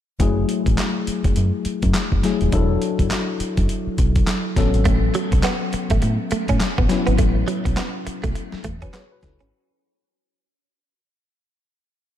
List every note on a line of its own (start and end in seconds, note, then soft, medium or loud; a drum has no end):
0.20 0.43 F#1 loud
0.20 2.20 F#3 medium
0.20 2.20 A3 medium
0.20 2.21 E4 medium
0.20 2.21 G#4 medium
0.20 kick loud
0.20 closed hi-hat medium
0.49 closed hi-hat medium
0.66 0.76 A1 medium
0.66 kick medium
0.66 closed hi-hat medium
0.78 snare loud
0.78 clap medium
0.78 closed hi-hat medium
1.07 muted fingered electric bass stroke soft
1.07 closed hi-hat medium
1.24 1.34 F#1 medium
1.24 kick loud
1.24 closed hi-hat soft
1.36 1.51 F#2 medium
1.36 closed hi-hat medium
1.65 muted fingered electric bass stroke soft
1.65 closed hi-hat medium
1.82 1.92 F#2 medium
1.82 kick loud
1.82 closed hi-hat medium
1.94 muted fingered electric bass stroke soft
1.94 snare loud
1.94 clap medium
1.94 closed hi-hat medium
2.12 2.21 F#1 medium
2.12 kick medium
2.23 2.52 F#3 medium
2.23 2.53 A3 medium
2.23 2.53 E4 medium
2.23 2.54 G#4 medium
2.23 snare medium
2.23 closed hi-hat medium
2.41 2.51 D#1 medium
2.41 closed hi-hat soft
2.52 2.76 E1 loud
2.52 4.53 F#3 medium
2.52 4.53 D4 medium
2.52 4.54 E4 medium
2.52 4.54 A4 medium
2.52 kick loud
2.52 closed hi-hat medium
2.82 closed hi-hat medium
2.99 3.09 F#1 medium
2.99 kick medium
2.99 closed hi-hat medium
3.11 snare loud
3.11 clap medium
3.11 closed hi-hat medium
3.40 muted fingered electric bass stroke soft
3.40 closed hi-hat medium
3.57 3.67 F#1 medium
3.57 kick loud
3.57 closed hi-hat soft
3.69 closed hi-hat medium
3.87 muted fingered electric bass stroke soft
3.98 4.22 B1 loud
3.98 kick loud
3.98 closed hi-hat medium
4.16 kick medium
4.16 closed hi-hat medium
4.27 snare loud
4.27 clap medium
4.27 closed hi-hat medium
4.56 4.71 A1 medium
4.56 6.86 F#3 medium
4.56 6.86 B3 medium
4.56 6.86 C#4 medium
4.56 6.87 A4 medium
4.56 kick medium
4.56 snare medium
4.56 closed hi-hat medium
4.74 4.84 G#1 medium
4.74 closed hi-hat soft
4.85 5.09 A1 loud
4.85 4.97 A3 medium
4.85 kick loud
4.85 closed hi-hat medium
5.14 5.26 F#3 medium
5.14 closed hi-hat medium
5.32 5.42 B1 medium
5.32 muted clean electric guitar stroke soft
5.32 kick medium
5.32 closed hi-hat medium
5.43 5.55 B3 medium
5.43 snare loud
5.43 clap medium
5.43 closed hi-hat medium
5.73 muted fingered electric bass stroke soft
5.73 muted clean electric guitar stroke soft
5.73 closed hi-hat medium
5.90 6.00 A1 medium
5.90 5.98 A3 medium
5.90 kick loud
5.90 closed hi-hat medium
6.02 6.17 A2 medium
6.02 muted clean electric guitar stroke soft
6.02 closed hi-hat medium
6.31 6.43 A3 medium
6.31 muted fingered electric bass stroke soft
6.31 closed hi-hat medium
6.48 6.58 A2 medium
6.48 6.57 C#4 medium
6.48 kick medium
6.48 closed hi-hat soft
6.60 muted fingered electric bass stroke soft
6.60 snare loud
6.60 clap medium
6.60 closed hi-hat medium
6.78 6.88 A1 medium
6.78 6.86 B3 medium
6.78 kick loud
6.89 9.18 F#3 medium
6.89 9.19 B3 medium
6.89 8.61 C#4 medium
6.89 8.62 E4 medium
6.89 muted clean electric guitar stroke soft
6.89 snare medium
6.89 closed hi-hat medium
7.07 7.17 G#1 medium
7.07 7.14 B3 medium
7.07 closed hi-hat soft
7.18 7.42 A1 loud
7.18 7.30 A3 medium
7.18 kick loud
7.18 closed hi-hat medium
7.48 7.59 F#3 medium
7.48 closed hi-hat medium
7.65 7.75 B1 medium
7.65 muted clean electric guitar stroke soft
7.65 kick medium
7.65 closed hi-hat medium
7.77 7.88 B3 medium
7.77 snare loud
7.77 clap medium
7.77 closed hi-hat medium
8.07 muted clean electric guitar stroke soft
8.07 muted fingered electric bass stroke soft
8.07 closed hi-hat medium
8.24 8.33 B1 medium
8.24 8.31 A3 medium
8.24 kick loud
8.24 closed hi-hat soft
8.35 muted clean electric guitar stroke soft
8.35 closed hi-hat medium
8.52 muted fingered electric bass stroke soft
8.52 snare medium
8.64 8.88 E2 loud
8.64 8.76 A3 medium
8.64 kick medium
8.64 closed hi-hat medium
8.82 8.89 C#4 medium
8.82 8.94 F#4 medium
8.82 8.94 B4 medium
8.82 kick loud
8.82 closed hi-hat medium
8.94 9.05 B3 medium
8.94 9.11 G#4 medium
8.94 9.11 C#5 medium
8.94 snare loud
8.94 clap medium
8.94 closed hi-hat medium
9.12 9.23 F#4 medium
9.12 9.23 B4 medium
9.23 9.37 C#2 medium
9.23 9.41 E4 medium
9.23 9.40 A4 medium
9.23 muted clean electric guitar stroke soft
9.23 kick medium
9.23 snare medium
9.23 closed hi-hat medium
9.40 9.48 C#4 medium
9.40 9.69 C#4 medium
9.40 9.69 F#4 medium
9.40 closed hi-hat soft